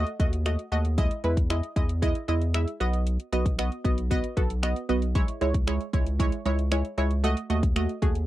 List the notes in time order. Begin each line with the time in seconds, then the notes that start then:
0.07 closed hi-hat
0.20 D#2 A3 F#4 D#5, kick, closed hi-hat
0.33 closed hi-hat
0.46 A3 F#4 D#5, finger snap, closed hi-hat
0.59 closed hi-hat
0.72 D#2 A3 F#4 D#5, closed hi-hat
0.85 closed hi-hat
0.98 G#3 E4 D#5, kick, closed hi-hat
1.11 closed hi-hat
1.24 E2 G#3 E4 B4, closed hi-hat
1.37 kick, closed hi-hat
1.50 G#3 E4 D#5, finger snap, closed hi-hat
1.63 closed hi-hat
1.76 E2 G#3 E4 D#5, kick, closed hi-hat
1.89 closed hi-hat
2.02 G#3 E4 D#5, kick, closed hi-hat
2.15 closed hi-hat
2.28 E2 G#3 E4 D#5, closed hi-hat
2.42 closed hi-hat
2.54 G#3 E4 E5, finger snap, closed hi-hat
2.68 closed hi-hat
2.80 B1 B3 F#4 D#5, closed hi-hat
2.93 closed hi-hat
3.07 closed hi-hat
3.20 closed hi-hat
3.32 B1 B3 F#4 D#5, closed hi-hat
3.46 kick, closed hi-hat
3.59 B3 F#4 D#5, finger snap, closed hi-hat
3.72 closed hi-hat
3.84 B1 B3 F#4 D#5, kick, closed hi-hat
3.98 closed hi-hat
4.11 B3 F#4 D#5, kick, closed hi-hat
4.24 closed hi-hat
4.37 B1 B3 F#4 A4, kick, closed hi-hat
4.50 closed hi-hat
4.63 B3 F#4 D#5, finger snap, closed hi-hat
4.76 closed hi-hat
4.89 B1 B3 F#4 D#5, closed hi-hat
5.02 closed hi-hat
5.15 G#3 E4 C#5, kick, closed hi-hat
5.28 closed hi-hat
5.41 C#2 G#3 E4 C#5, closed hi-hat
5.54 kick, closed hi-hat
5.67 G#3 E4 C#5, finger snap, closed hi-hat
5.81 closed hi-hat
5.93 C#2 G#3 E4 C#5, kick, closed hi-hat
6.07 closed hi-hat
6.19 G#3 E4 C#5, kick, closed hi-hat
6.32 closed hi-hat
6.46 C#2 G#3 E4 C#5, closed hi-hat
6.59 closed hi-hat
6.71 G#3 E4 C#5, finger snap, closed hi-hat
6.85 closed hi-hat
6.98 C#2 G#3 E4 C#5, closed hi-hat
7.11 closed hi-hat
7.24 A3 F#4 D#5, closed hi-hat
7.37 closed hi-hat
7.50 D#2 A3 F#4 D#5, closed hi-hat
7.63 kick, closed hi-hat
7.76 A3 F#4 D#5, finger snap, closed hi-hat
7.89 closed hi-hat
8.02 D#2 A3 F#4 G#4, kick, closed hi-hat
8.15 closed hi-hat